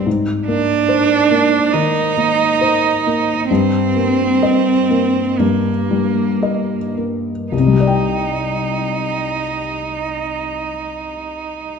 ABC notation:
X:1
M:4/4
L:1/8
Q:1/4=60
K:Cm
V:1 name="Cello"
z D3 E4 | C4 B,3 z | E8 |]
V:2 name="Felt piano"
A,, B, c B, E, B, c B, | G,, B, e B, G,, G, e B, | [C,,C,G,Gdg]8 |]